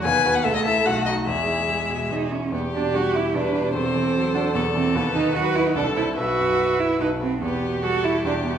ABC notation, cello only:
X:1
M:3/4
L:1/16
Q:1/4=147
K:E
V:1 name="Cello"
B,4 A,4 A,4 | G,4 G,4 D2 C2 | [K:Em] B,2 D2 F2 E2 D4 | C6 D2 B,2 C2 |
B,2 ^D2 F2 E D =D2 E2 | F6 E2 ^D2 C2 | B,4 F2 E2 D2 B,2 |]